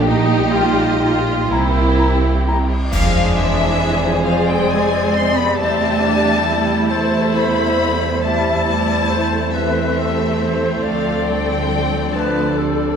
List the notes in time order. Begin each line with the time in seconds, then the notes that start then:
Already playing: A#1 A#2 G4
0.09 G3 D#4 D#5 G5
0.54 D#4 F4 G5
1.02 D#4 F4 G5
1.49 C2 C3 A#3 E4 G4 C5 A#5
1.98 E4 A#5
2.47 E4 A#5
2.91 F2 C3 F3 G#3 D4 G#4 C5 F5, concert bass drum, crash
3.35 E3 E5
4.25 F3 G#3 C4 D5 F5
4.49 G3 G5
4.70 G#3 G#5
5.15 C4 C6
5.36 B3 B5
5.58 E2 G3 A3 C4 G4 E5 A5
6.02 D4
6.47 E4
6.89 A3 C5 E5 A5
7.34 B3 B5
8.22 G3 A3 C4 E4 C5 E5 A5
8.66 G3 D5
9.10 A3 C5
9.53 E3 C4 B4 C5 E5
9.99 A4
10.42 C5
10.82 D2 F3 D4 A4 D5 F5
11.27 G3 G5
12.14 F3 A3 A4 B4 A5
12.58 G3 A4